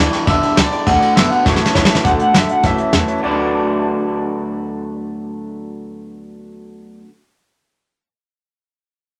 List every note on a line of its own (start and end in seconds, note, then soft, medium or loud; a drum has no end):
0.00 0.25 G2 medium
0.00 0.12 E3 medium
0.00 0.13 G3 medium
0.00 0.13 B3 medium
0.00 0.12 E4 medium
0.00 0.30 D5 medium
0.11 0.27 G3 medium
0.11 0.28 B3 medium
0.11 0.28 E4 medium
0.11 0.21 D5 medium
0.11 0.21 G5 medium
0.11 0.21 C#6 loud
0.11 snare soft
0.11 ride medium
0.15 0.27 E3 soft
0.26 0.40 E2 loud
0.26 0.43 G2 medium
0.26 0.43 D3 medium
0.26 0.43 E3 medium
0.26 0.43 G3 medium
0.26 0.42 B3 loud
0.26 0.41 E4 loud
0.26 0.36 D5 medium
0.26 0.55 E5 medium
0.26 0.36 G5 medium
0.26 0.36 B5 medium
0.26 kick loud
0.26 ride medium
0.41 0.56 E3 soft
0.41 0.57 G3 soft
0.41 0.57 B3 medium
0.41 0.57 E4 medium
0.41 0.51 D5 medium
0.41 0.51 G5 medium
0.41 0.52 B5 medium
0.41 ride medium
0.56 0.69 C#2 medium
0.56 0.84 G2 medium
0.56 0.84 D3 medium
0.56 0.73 G3 medium
0.56 0.72 B3 medium
0.56 0.65 D5 loud
0.56 0.70 D5 medium
0.56 0.66 G5 loud
0.56 0.66 B5 loud
0.56 snare loud
0.56 ride medium
0.70 0.86 E3 soft
0.70 0.86 G3 soft
0.70 0.86 B3 medium
0.70 0.87 E4 medium
0.70 0.80 D5 medium
0.70 0.87 D5 medium
0.70 0.80 G5 medium
0.70 0.81 B5 medium
0.70 ride medium
0.86 0.99 D2 loud
0.86 1.01 D3 medium
0.86 1.02 A3 medium
0.86 1.01 B3 medium
0.86 0.99 F#4 medium
0.86 0.95 D5 loud
0.86 1.14 F#5 loud
0.86 0.96 F#5 medium
0.86 0.96 A5 loud
0.86 kick loud
0.86 ride medium
1.00 1.16 A3 soft
1.00 1.16 B3 soft
1.00 1.16 F#4 medium
1.00 1.10 D5 loud
1.00 1.10 F#5 medium
1.00 1.10 A5 loud
1.00 ride medium
1.15 1.28 G1 loud
1.15 1.31 D3 medium
1.15 1.31 A3 medium
1.15 1.32 B3 medium
1.15 1.30 F#4 medium
1.15 1.25 D5 medium
1.15 1.30 E5 medium
1.15 1.25 F#5 medium
1.15 1.25 A5 medium
1.15 snare loud
1.15 ride medium
1.30 1.44 A3 soft
1.30 1.46 B3 medium
1.30 1.45 F#4 medium
1.30 1.40 D5 medium
1.30 1.45 F#5 medium
1.30 1.40 F#5 medium
1.30 1.40 B5 medium
1.30 muted upright bass stroke medium
1.30 ride medium
1.45 1.58 A1 medium
1.45 1.60 A2 medium
1.45 1.60 E3 medium
1.45 1.61 A3 medium
1.45 1.60 C#4 medium
1.45 1.59 F#4 loud
1.45 1.74 C#5 medium
1.45 1.54 C#5 medium
1.45 1.55 E5 medium
1.45 1.55 A5 medium
1.45 kick loud
1.45 snare medium
1.56 snare medium
1.60 1.74 A3 soft
1.60 1.75 C#4 medium
1.60 1.75 F#4 medium
1.60 1.69 C#5 medium
1.60 1.70 E5 medium
1.60 1.70 A5 medium
1.65 snare medium
1.74 1.87 C#2 medium
1.74 2.01 A2 medium
1.74 1.90 E3 medium
1.74 1.90 A3 medium
1.74 1.89 C#4 medium
1.74 1.88 F#4 medium
1.74 1.84 C#5 medium
1.74 2.03 C#5 medium
1.74 1.84 E5 medium
1.74 1.84 A5 loud
1.74 kick medium
1.74 snare medium
1.85 1.98 C#5 medium
1.85 snare loud
1.89 2.04 A3 soft
1.89 2.05 C#4 medium
1.89 2.04 F#4 medium
1.89 1.99 E5 medium
1.89 1.99 A5 loud
1.95 snare loud
2.04 2.18 D2 loud
2.04 2.20 D3 medium
2.04 2.20 A3 medium
2.04 2.20 B3 medium
2.04 2.19 F#4 medium
2.04 2.13 D5 medium
2.04 2.13 F#5 medium
2.04 2.10 F#5 loud
2.04 2.14 A5 loud
2.04 kick loud
2.04 closed hi-hat medium
2.18 2.34 A3 soft
2.18 2.34 B3 soft
2.18 2.35 F#4 medium
2.18 2.28 D5 medium
2.18 2.28 F#5 medium
2.18 2.36 F#5 loud
2.18 2.28 A5 medium
2.18 muted upright bass stroke medium
2.18 closed hi-hat medium
2.33 2.47 G1 medium
2.33 2.61 D3 medium
2.33 2.50 A3 medium
2.33 2.49 B3 medium
2.33 2.49 F#4 medium
2.33 2.43 D5 medium
2.33 2.43 F#5 medium
2.33 2.43 A5 medium
2.33 snare loud
2.33 closed hi-hat medium
2.37 2.51 E5 loud
2.49 2.64 A3 soft
2.49 2.65 B3 soft
2.49 2.64 F#4 medium
2.49 2.58 D5 medium
2.49 2.58 F#5 medium
2.49 2.65 F#5 medium
2.49 2.58 A5 medium
2.49 closed hi-hat medium
2.63 2.77 A1 medium
2.63 2.79 A2 medium
2.63 2.79 E3 medium
2.63 2.79 A3 medium
2.63 2.79 C#4 medium
2.63 2.78 F#4 loud
2.63 2.73 C#5 medium
2.63 2.73 E5 medium
2.63 2.93 E5 medium
2.63 2.73 A5 loud
2.63 kick loud
2.63 closed hi-hat medium
2.78 2.92 A3 soft
2.78 2.93 C#4 medium
2.78 2.94 F#4 medium
2.78 2.88 C#5 medium
2.78 2.88 E5 medium
2.78 2.88 A5 medium
2.78 muted upright bass stroke medium
2.78 closed hi-hat medium
2.93 3.06 E2 medium
2.93 3.20 A2 medium
2.93 3.08 E3 medium
2.93 3.08 A3 medium
2.93 3.08 C#4 medium
2.93 3.07 F#4 medium
2.93 3.02 C#5 medium
2.93 3.03 E5 medium
2.93 3.03 A5 medium
2.93 snare loud
2.93 closed hi-hat medium
3.07 3.23 A3 soft
3.07 3.24 C#4 medium
3.07 3.23 F#4 medium
3.07 3.17 C#5 medium
3.07 3.17 E5 medium
3.07 3.17 A5 medium
3.07 closed hi-hat medium
3.18 7.00 D3 medium
3.18 6.98 D5 medium
3.23 7.01 D2 loud
3.23 7.05 F#3 loud
3.23 7.06 A3 medium
3.23 7.07 D4 loud
3.23 7.07 F#4 loud
3.23 7.08 B4 loud
3.23 7.02 D5 medium
3.23 7.01 F#5 medium
3.23 7.03 A5 medium
3.28 7.10 B3 medium
3.28 7.13 F#4 medium